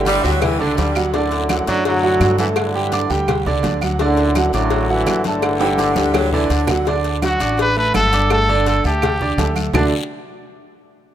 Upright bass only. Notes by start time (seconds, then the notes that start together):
Already playing: G1
0.24 D2
0.60 C#2
0.78 D2
1.67 F#2
2.20 G2
3.10 D2
3.46 C#2
3.64 D2
4.53 A1
5.06 G1
5.95 D2
6.50 D2
7.40 A1
7.94 G1
8.84 D2
9.38 D2
9.74 D2